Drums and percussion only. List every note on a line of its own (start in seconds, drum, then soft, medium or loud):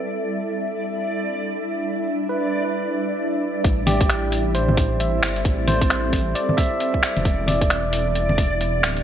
3.64 kick loud
3.64 closed hi-hat medium
3.87 open hi-hat medium
3.87 low bongo medium
4.01 kick loud
4.01 closed hi-hat medium
4.10 finger snap loud
4.10 closed hi-hat medium
4.32 open hi-hat medium
4.55 closed hi-hat medium
4.68 low bongo medium
4.77 kick loud
4.77 open hi-hat medium
5.00 closed hi-hat medium
5.23 finger snap loud
5.23 open hi-hat medium
5.36 closed hi-hat soft
5.45 kick loud
5.45 closed hi-hat medium
5.68 open hi-hat medium
5.68 low bongo medium
5.81 kick loud
5.81 closed hi-hat medium
5.90 finger snap loud
5.90 closed hi-hat medium
6.13 kick medium
6.13 open hi-hat medium
6.35 closed hi-hat medium
6.49 low bongo medium
6.58 kick loud
6.58 open hi-hat medium
6.80 closed hi-hat medium
6.94 kick medium
7.03 finger snap loud
7.03 open hi-hat medium
7.17 closed hi-hat soft
7.17 low bongo medium
7.25 kick loud
7.25 closed hi-hat medium
7.48 open hi-hat medium
7.48 low bongo medium
7.61 kick loud
7.61 closed hi-hat medium
7.70 finger snap loud
7.70 closed hi-hat medium
7.93 open hi-hat medium
8.15 closed hi-hat medium
8.29 low bongo medium
8.38 kick loud
8.38 open hi-hat medium
8.61 closed hi-hat medium
8.83 finger snap loud
8.83 open hi-hat medium
8.97 closed hi-hat soft